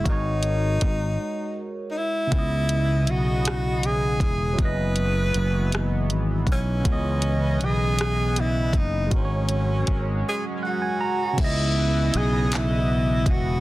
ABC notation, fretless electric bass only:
X:1
M:6/8
L:1/8
Q:3/8=53
K:C#dor
V:1 name="Fretless electric bass" clef=bass
G,,,2 G,,, z3 | C,,2 B,,,3 E,,, | F,,,2 F,,,2 G,,, B,,, | C,,2 B,,,3 F,,, |
G,,,2 G,,, z3 | C,,2 B,,,3 E,,, |]